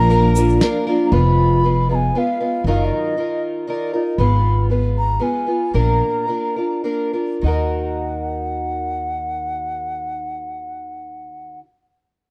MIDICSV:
0, 0, Header, 1, 7, 480
1, 0, Start_track
1, 0, Key_signature, -6, "minor"
1, 0, Tempo, 510638
1, 1047, Time_signature, 3, 2, 24, 8
1, 4409, Tempo, 531915
1, 5849, Tempo, 573614
1, 6809, Tempo, 596421
1, 10730, End_track
2, 0, Start_track
2, 0, Title_t, "Flute"
2, 0, Program_c, 0, 73
2, 0, Note_on_c, 0, 82, 119
2, 795, Note_off_c, 0, 82, 0
2, 990, Note_on_c, 0, 82, 76
2, 1057, Note_on_c, 0, 83, 104
2, 1071, Note_off_c, 0, 82, 0
2, 1771, Note_off_c, 0, 83, 0
2, 1799, Note_on_c, 0, 82, 78
2, 1832, Note_on_c, 0, 80, 84
2, 1842, Note_off_c, 0, 82, 0
2, 2050, Note_on_c, 0, 77, 82
2, 2064, Note_off_c, 0, 80, 0
2, 2508, Note_off_c, 0, 77, 0
2, 2518, Note_on_c, 0, 77, 75
2, 2679, Note_on_c, 0, 74, 56
2, 2693, Note_off_c, 0, 77, 0
2, 2754, Note_on_c, 0, 75, 69
2, 2768, Note_off_c, 0, 74, 0
2, 3220, Note_off_c, 0, 75, 0
2, 3449, Note_on_c, 0, 74, 66
2, 3783, Note_off_c, 0, 74, 0
2, 3931, Note_on_c, 0, 83, 85
2, 4378, Note_off_c, 0, 83, 0
2, 4669, Note_on_c, 0, 82, 89
2, 4894, Note_on_c, 0, 80, 83
2, 4908, Note_off_c, 0, 82, 0
2, 5365, Note_off_c, 0, 80, 0
2, 5373, Note_on_c, 0, 82, 79
2, 6294, Note_off_c, 0, 82, 0
2, 6817, Note_on_c, 0, 78, 69
2, 10158, Note_off_c, 0, 78, 0
2, 10730, End_track
3, 0, Start_track
3, 0, Title_t, "Fiddle"
3, 0, Program_c, 1, 110
3, 0, Note_on_c, 1, 70, 89
3, 805, Note_off_c, 1, 70, 0
3, 10730, End_track
4, 0, Start_track
4, 0, Title_t, "Twelve-string acoustic guitar"
4, 0, Program_c, 2, 25
4, 87, Note_on_c, 2, 58, 62
4, 93, Note_on_c, 2, 62, 69
4, 94, Note_on_c, 2, 65, 68
4, 104, Note_on_c, 2, 70, 74
4, 327, Note_off_c, 2, 58, 0
4, 330, Note_off_c, 2, 62, 0
4, 331, Note_off_c, 2, 65, 0
4, 331, Note_off_c, 2, 70, 0
4, 343, Note_on_c, 2, 70, 53
4, 353, Note_on_c, 2, 65, 47
4, 354, Note_on_c, 2, 62, 46
4, 575, Note_off_c, 2, 70, 0
4, 576, Note_off_c, 2, 62, 0
4, 580, Note_off_c, 2, 65, 0
4, 582, Note_on_c, 2, 58, 74
4, 587, Note_on_c, 2, 62, 70
4, 591, Note_on_c, 2, 65, 85
4, 600, Note_on_c, 2, 70, 86
4, 805, Note_off_c, 2, 70, 0
4, 814, Note_off_c, 2, 58, 0
4, 815, Note_off_c, 2, 65, 0
4, 816, Note_on_c, 2, 70, 62
4, 817, Note_off_c, 2, 62, 0
4, 826, Note_on_c, 2, 65, 58
4, 837, Note_on_c, 2, 62, 51
4, 1050, Note_off_c, 2, 65, 0
4, 1051, Note_off_c, 2, 70, 0
4, 1052, Note_on_c, 2, 59, 67
4, 1053, Note_on_c, 2, 41, 72
4, 1058, Note_off_c, 2, 62, 0
4, 1059, Note_on_c, 2, 53, 73
4, 1061, Note_on_c, 2, 65, 85
4, 1062, Note_on_c, 2, 56, 69
4, 1066, Note_on_c, 2, 71, 82
4, 1525, Note_off_c, 2, 59, 0
4, 1529, Note_off_c, 2, 41, 0
4, 1534, Note_off_c, 2, 56, 0
4, 1536, Note_off_c, 2, 71, 0
4, 1536, Note_on_c, 2, 59, 46
4, 1545, Note_on_c, 2, 56, 52
4, 1551, Note_off_c, 2, 65, 0
4, 1555, Note_on_c, 2, 65, 55
4, 1557, Note_on_c, 2, 71, 53
4, 1564, Note_off_c, 2, 53, 0
4, 1765, Note_off_c, 2, 71, 0
4, 1769, Note_off_c, 2, 65, 0
4, 1771, Note_off_c, 2, 59, 0
4, 1775, Note_off_c, 2, 56, 0
4, 1776, Note_on_c, 2, 71, 38
4, 1781, Note_on_c, 2, 65, 36
4, 1788, Note_on_c, 2, 56, 40
4, 1795, Note_on_c, 2, 59, 35
4, 2010, Note_off_c, 2, 59, 0
4, 2011, Note_off_c, 2, 71, 0
4, 2013, Note_off_c, 2, 65, 0
4, 2014, Note_off_c, 2, 56, 0
4, 2021, Note_on_c, 2, 59, 56
4, 2025, Note_on_c, 2, 56, 58
4, 2031, Note_on_c, 2, 65, 58
4, 2040, Note_on_c, 2, 71, 53
4, 2248, Note_off_c, 2, 71, 0
4, 2251, Note_off_c, 2, 56, 0
4, 2251, Note_off_c, 2, 65, 0
4, 2254, Note_off_c, 2, 59, 0
4, 2259, Note_on_c, 2, 71, 42
4, 2262, Note_on_c, 2, 56, 40
4, 2262, Note_on_c, 2, 65, 44
4, 2269, Note_on_c, 2, 59, 35
4, 2493, Note_off_c, 2, 71, 0
4, 2494, Note_off_c, 2, 56, 0
4, 2494, Note_off_c, 2, 65, 0
4, 2498, Note_off_c, 2, 59, 0
4, 2506, Note_on_c, 2, 54, 68
4, 2512, Note_on_c, 2, 51, 76
4, 2512, Note_on_c, 2, 63, 65
4, 2516, Note_on_c, 2, 65, 76
4, 2520, Note_on_c, 2, 70, 85
4, 2970, Note_off_c, 2, 51, 0
4, 2975, Note_off_c, 2, 63, 0
4, 2976, Note_off_c, 2, 54, 0
4, 2981, Note_on_c, 2, 51, 46
4, 2983, Note_off_c, 2, 70, 0
4, 2986, Note_off_c, 2, 65, 0
4, 2986, Note_on_c, 2, 63, 46
4, 2990, Note_on_c, 2, 65, 52
4, 3005, Note_on_c, 2, 70, 51
4, 3442, Note_off_c, 2, 51, 0
4, 3451, Note_off_c, 2, 63, 0
4, 3454, Note_on_c, 2, 51, 53
4, 3461, Note_off_c, 2, 65, 0
4, 3462, Note_on_c, 2, 63, 55
4, 3465, Note_on_c, 2, 65, 54
4, 3466, Note_off_c, 2, 70, 0
4, 3476, Note_on_c, 2, 70, 63
4, 3686, Note_off_c, 2, 70, 0
4, 3690, Note_off_c, 2, 65, 0
4, 3691, Note_off_c, 2, 51, 0
4, 3695, Note_off_c, 2, 63, 0
4, 3697, Note_on_c, 2, 70, 42
4, 3702, Note_on_c, 2, 65, 38
4, 3714, Note_on_c, 2, 63, 33
4, 3932, Note_off_c, 2, 70, 0
4, 3935, Note_off_c, 2, 65, 0
4, 3937, Note_off_c, 2, 63, 0
4, 3938, Note_on_c, 2, 56, 62
4, 3941, Note_on_c, 2, 59, 72
4, 3948, Note_on_c, 2, 65, 72
4, 3951, Note_on_c, 2, 71, 75
4, 4404, Note_off_c, 2, 56, 0
4, 4412, Note_off_c, 2, 59, 0
4, 4415, Note_on_c, 2, 56, 47
4, 4419, Note_off_c, 2, 71, 0
4, 4423, Note_on_c, 2, 59, 46
4, 4430, Note_off_c, 2, 65, 0
4, 4430, Note_on_c, 2, 71, 54
4, 4434, Note_on_c, 2, 65, 49
4, 4853, Note_off_c, 2, 56, 0
4, 4860, Note_off_c, 2, 59, 0
4, 4864, Note_on_c, 2, 56, 57
4, 4867, Note_off_c, 2, 65, 0
4, 4871, Note_on_c, 2, 59, 60
4, 4874, Note_off_c, 2, 71, 0
4, 4878, Note_on_c, 2, 65, 52
4, 4885, Note_on_c, 2, 71, 56
4, 5097, Note_off_c, 2, 71, 0
4, 5108, Note_on_c, 2, 71, 43
4, 5109, Note_off_c, 2, 56, 0
4, 5110, Note_off_c, 2, 65, 0
4, 5113, Note_off_c, 2, 59, 0
4, 5121, Note_on_c, 2, 65, 37
4, 5125, Note_on_c, 2, 59, 33
4, 5351, Note_on_c, 2, 46, 65
4, 5352, Note_off_c, 2, 65, 0
4, 5353, Note_off_c, 2, 71, 0
4, 5356, Note_on_c, 2, 58, 70
4, 5357, Note_off_c, 2, 59, 0
4, 5361, Note_on_c, 2, 62, 70
4, 5363, Note_on_c, 2, 65, 73
4, 5366, Note_on_c, 2, 70, 76
4, 5828, Note_off_c, 2, 58, 0
4, 5835, Note_off_c, 2, 62, 0
4, 5839, Note_on_c, 2, 58, 43
4, 5843, Note_off_c, 2, 65, 0
4, 5846, Note_off_c, 2, 46, 0
4, 5846, Note_on_c, 2, 62, 48
4, 5847, Note_off_c, 2, 70, 0
4, 5853, Note_on_c, 2, 65, 52
4, 5858, Note_on_c, 2, 70, 50
4, 6070, Note_off_c, 2, 70, 0
4, 6078, Note_off_c, 2, 58, 0
4, 6080, Note_on_c, 2, 70, 42
4, 6081, Note_off_c, 2, 62, 0
4, 6082, Note_off_c, 2, 65, 0
4, 6092, Note_on_c, 2, 65, 36
4, 6098, Note_on_c, 2, 62, 31
4, 6303, Note_off_c, 2, 62, 0
4, 6310, Note_off_c, 2, 65, 0
4, 6310, Note_on_c, 2, 58, 51
4, 6313, Note_off_c, 2, 70, 0
4, 6313, Note_on_c, 2, 62, 51
4, 6320, Note_on_c, 2, 65, 54
4, 6323, Note_on_c, 2, 70, 64
4, 6548, Note_off_c, 2, 70, 0
4, 6552, Note_off_c, 2, 65, 0
4, 6557, Note_off_c, 2, 58, 0
4, 6558, Note_off_c, 2, 62, 0
4, 6558, Note_on_c, 2, 70, 45
4, 6562, Note_on_c, 2, 65, 43
4, 6572, Note_on_c, 2, 62, 35
4, 6794, Note_on_c, 2, 51, 71
4, 6807, Note_off_c, 2, 70, 0
4, 6809, Note_off_c, 2, 65, 0
4, 6810, Note_off_c, 2, 62, 0
4, 6813, Note_on_c, 2, 63, 66
4, 6832, Note_on_c, 2, 66, 68
4, 6845, Note_on_c, 2, 70, 70
4, 10167, Note_off_c, 2, 51, 0
4, 10186, Note_off_c, 2, 63, 0
4, 10205, Note_off_c, 2, 66, 0
4, 10218, Note_off_c, 2, 70, 0
4, 10730, End_track
5, 0, Start_track
5, 0, Title_t, "Clean electric guitar"
5, 0, Program_c, 3, 27
5, 0, Note_on_c, 3, 53, 64
5, 0, Note_on_c, 3, 62, 66
5, 99, Note_on_c, 3, 58, 62
5, 322, Note_off_c, 3, 53, 0
5, 334, Note_on_c, 3, 53, 56
5, 563, Note_off_c, 3, 62, 0
5, 574, Note_on_c, 3, 62, 71
5, 805, Note_off_c, 3, 58, 0
5, 816, Note_on_c, 3, 58, 61
5, 1097, Note_off_c, 3, 53, 0
5, 1098, Note_off_c, 3, 62, 0
5, 1099, Note_off_c, 3, 58, 0
5, 10730, End_track
6, 0, Start_track
6, 0, Title_t, "Upright bass"
6, 0, Program_c, 4, 32
6, 0, Note_on_c, 4, 34, 100
6, 533, Note_off_c, 4, 34, 0
6, 1052, Note_on_c, 4, 29, 93
6, 1971, Note_off_c, 4, 29, 0
6, 2485, Note_on_c, 4, 30, 77
6, 2714, Note_off_c, 4, 30, 0
6, 3932, Note_on_c, 4, 32, 83
6, 4845, Note_off_c, 4, 32, 0
6, 5361, Note_on_c, 4, 34, 74
6, 5591, Note_off_c, 4, 34, 0
6, 6806, Note_on_c, 4, 39, 62
6, 10147, Note_off_c, 4, 39, 0
6, 10730, End_track
7, 0, Start_track
7, 0, Title_t, "Drums"
7, 98, Note_on_c, 9, 42, 52
7, 192, Note_off_c, 9, 42, 0
7, 336, Note_on_c, 9, 82, 95
7, 430, Note_off_c, 9, 82, 0
7, 461, Note_on_c, 9, 82, 32
7, 555, Note_off_c, 9, 82, 0
7, 574, Note_on_c, 9, 38, 80
7, 574, Note_on_c, 9, 42, 58
7, 668, Note_off_c, 9, 38, 0
7, 668, Note_off_c, 9, 42, 0
7, 10730, End_track
0, 0, End_of_file